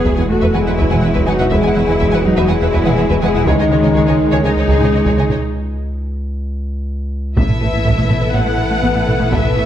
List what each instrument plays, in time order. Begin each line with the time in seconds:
Already playing: sub bass E1, analog synth pad E3 G#3 F#4 B4, trombone section F#3 G#3, cello section B3, viola section G#4, french horn section B4
0.04 double bass section E2, analog synth bass E2, synth arpeggio sound E3, violin section B4 E5, taiko
0.16 analog synth bass E2, double bass section E2, synth arpeggio sound E4, violin section B4 F#5 G#5
0.30 analog synth bass E2, cello section A3, viola section F#4, french horn section A4
0.41 analog synth bass E2, double bass section E2, synth arpeggio sound E3, violin section B4 E5
0.53 double bass section E2, analog synth bass E3, cello section G#3, synth arpeggio sound B3, viola section E4, french horn section G#4, violin section B4 F#5 G#5
0.66 double bass section E2, analog synth bass E2, synth arpeggio sound G#3, violin section B4 E5 F#5
0.78 analog synth bass E2, double bass section E2, synth arpeggio sound E3, violin section B4 E5, taiko
0.90 double bass section E2, analog synth bass E3, synth arpeggio sound B3, violin section B4 F#5 G#5, taiko low-mid
1.00 double bass section E2, analog synth bass E3, synth arpeggio sound B3, violin section B4 E5 F#5
1.13 analog synth bass E2, double bass section E2, synth arpeggio sound E3, violin section B4 E5, taiko
1.26 double bass section E2, analog synth bass E3, cello section F#3, synth arpeggio sound B3, viola section D#4, french horn section F#4, violin section B4 F#5 G#5
1.39 double bass section E2, analog synth bass E2, synth arpeggio sound E4, violin section B4 E5 F#5, taiko low-mid
1.50 analog synth bass E2, double bass section E2, synth arpeggio sound E3, cello section G#3, viola section E4, french horn section G#4, violin section B4 E5, taiko
1.63 double bass section E2, analog synth bass E3, synth arpeggio sound B3, violin section B4 F#5 G#5
1.74 double bass section E2, analog synth bass E3, synth arpeggio sound B3, violin section F#5
1.78 violin section B4 E5
1.86 double bass section E2, analog synth bass E3, synth arpeggio sound B3, violin section B4 G#5
1.91 violin section F#5
1.99 analog synth bass E2, double bass section E2, synth arpeggio sound E3, violin section B4 E5, taiko
2.11 analog synth bass E2, double bass section E2, synth arpeggio sound E4, violin section B4 F#5 G#5
2.24 analog synth bass E2, cello section F#3, viola section D#4, french horn section F#4
2.37 double bass section E2, analog synth bass E2, synth arpeggio sound E3, violin section B4 E5
2.47 double bass section E2, analog synth bass E3, cello section G#3, synth arpeggio sound B3, viola section E4, french horn section G#4, violin section B4 F#5 G#5
2.60 analog synth bass E2, double bass section E2, synth arpeggio sound G#3, violin section B4 E5 F#5
2.72 analog synth bass E2, double bass section E2, synth arpeggio sound E3, violin section B4 E5, taiko
2.85 double bass section E2, analog synth bass E3, synth arpeggio sound B3, violin section B4 F#5 G#5, taiko low-mid
2.96 double bass section E2, analog synth bass E3, synth arpeggio sound B3, violin section B4 E5 F#5
3.09 double bass section E2, analog synth bass E2, synth arpeggio sound E3, violin section B4 E5, taiko
3.21 double bass section E2, analog synth bass E3, cello section G#3, synth arpeggio sound B3, viola section E4, french horn section G#4, violin section B4 F#5 G#5
3.34 double bass section E2, analog synth bass E2, synth arpeggio sound E4, violin section B4 E5 F#5, taiko low-mid
3.46 double bass section C#2, sub bass C#2, analog synth bass C#2, synth arpeggio sound C#3, analog synth pad D#3 G#3 G#4 C#5, cello section D#3, trombone section D#3 G#3, viola section G#3, french horn section D#4, violin section G#4 C#5, taiko
3.59 double bass section C#2, analog synth bass C#3, synth arpeggio sound C#4, violin section C#5 D#5 G#5
3.71 double bass section C#2, analog synth bass C#3, synth arpeggio sound C#4, violin section C#5 D#5
3.83 double bass section C#2, analog synth bass C#3, synth arpeggio sound C#4, violin section C#5 D#5 G#5
3.95 analog synth bass C#2, double bass section C#2, synth arpeggio sound C#3, violin section G#4 C#5, taiko
4.07 analog synth bass C#2, double bass section C#2, synth arpeggio sound D#4, violin section C#5 D#5 G#5
4.20 analog synth bass C#2
4.31 analog synth bass C#2, double bass section C#2, synth arpeggio sound C#3, violin section G#4 C#5
4.43 double bass section C#2, analog synth bass C#3, cello section G#3, synth arpeggio sound C#4, viola section D#4, french horn section G#4, violin section C#5 D#5 G#5
4.56 analog synth bass C#2, double bass section C#2, synth arpeggio sound G#3, violin section C#5 D#5
4.68 analog synth bass C#2, double bass section C#2, synth arpeggio sound C#3, violin section G#4 C#5, taiko
4.80 double bass section C#2, analog synth bass C#3, synth arpeggio sound C#4, violin section C#5 D#5 G#5, taiko low-mid
4.92 double bass section C#2, analog synth bass C#3, synth arpeggio sound C#4, violin section C#5 D#5
5.05 analog synth bass C#2, double bass section C#2, synth arpeggio sound C#3, violin section G#4 C#5, taiko
5.17 double bass section C#2, analog synth bass C#3, synth arpeggio sound C#4, violin section C#5 D#5 G#5
5.29 analog synth bass C#2, double bass section C#2, synth arpeggio sound D#4, violin section C#5 D#5, taiko low-mid
7.36 sub bass A1, double bass section A1, analog synth bass A2, cello section A2, analog synth pad E3 B3 A4 B4, trombone section E3 A3, synth arpeggio sound A3, french horn section B3 B4, viola section B3 E4, violin section A4 B4 E5, taiko
7.49 analog synth bass A2, taiko low-mid
7.61 double bass section A1, analog synth bass A2, cello section A2, viola section A3, synth arpeggio sound E4
7.73 analog synth bass A2, cello section A2, viola section B3, synth arpeggio sound E4
7.85 double bass section A1, analog synth bass A2, cello section A2, synth arpeggio sound A3, viola section B3, taiko
7.97 cello section A2, analog synth bass A3, viola section B3, synth arpeggio sound A4, taiko low-mid
8.09 double bass section A1, analog synth bass A2, cello section A2, viola section A3, synth arpeggio sound B4, taiko low-mid
8.21 analog synth bass A2, cello section A2, viola section B3, synth arpeggio sound B4
8.33 double bass section A1, analog synth bass A2, cello section A2, synth arpeggio sound A3, viola section B3, violin section F#5
8.46 cello section A2, analog synth bass A3, viola section B3, synth arpeggio sound A4
8.58 double bass section A1, analog synth bass A2, cello section A2, viola section A3, synth arpeggio sound B4
8.71 analog synth bass A3
8.82 double bass section A1, analog synth bass A2, cello section A2, synth arpeggio sound A3, viola section B3
8.94 cello section A2, analog synth bass A2, viola section B3, synth arpeggio sound B4
9.07 double bass section A1, cello section A2, analog synth bass A2, viola section A3, synth arpeggio sound B4, taiko low-mid
9.19 cello section A2, analog synth bass A3, viola section B3, synth arpeggio sound A4, taiko low-mid
9.31 double bass section A1, cello section A2, analog synth bass A2, synth arpeggio sound A3, viola section B3, violin section E5, taiko
9.45 analog synth bass A2, taiko low-mid
9.56 double bass section A1, cello section A2, analog synth bass A2, viola section A3, synth arpeggio sound E4